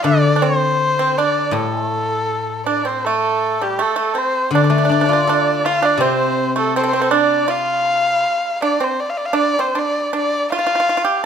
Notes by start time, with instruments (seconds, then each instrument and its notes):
Already playing: guzheng F3
0.04 guzheng D3, pipa D4, erhu D5
0.36 pipa D4
0.42 pipa C4, erhu C5
0.99 pipa C4
1.17 pipa D4, erhu D5
1.51 guzheng A2, pipa G3
1.56 erhu A4
1.73 pipa G#3
1.86 pipa A3
2.66 pipa D4, erhu D5
2.85 pipa C4, erhu C5
3.04 pipa A3, erhu A4
3.62 pipa G3, erhu G4
3.79 pipa A3, erhu A4
3.96 pipa A3
4.01 erhu A4
4.15 pipa C4, erhu C5
4.51 guzheng D3, erhu D5
4.55 pipa D4
4.64 pipa D4
4.70 guzheng A3, pipa D4
4.78 pipa D4
4.85 pipa D4
4.89 guzheng D4, pipa D4
5.01 pipa D4
5.06 pipa D4, guzheng F4
5.13 pipa D4
5.27 pipa D4, guzheng A4
5.65 pipa F4, erhu F5
5.82 pipa D4, erhu D5
5.97 guzheng C3, pipa C4
6.02 erhu C5
6.56 pipa A3, erhu A4
6.76 pipa C4, erhu A4 C5
6.84 pipa C4
6.88 erhu C5
6.93 pipa C4, erhu C5
6.99 pipa C4, erhu A4
7.05 erhu C5
7.11 pipa D4, erhu D5
7.48 pipa F4, erhu F5
8.62 pipa D4, erhu D5
8.80 pipa C4, erhu C5
9.00 erhu D5
9.10 erhu F5
9.17 erhu D5
9.25 erhu F5
9.33 pipa D4, erhu D5
9.59 pipa C4, erhu C5
9.75 pipa D4, erhu D5
10.13 pipa D4, erhu D5
10.52 pipa F4, erhu F5
10.59 pipa F4
10.67 pipa F4
10.75 pipa F4
10.80 pipa F4
10.89 pipa F4
10.97 pipa F4
11.05 pipa G4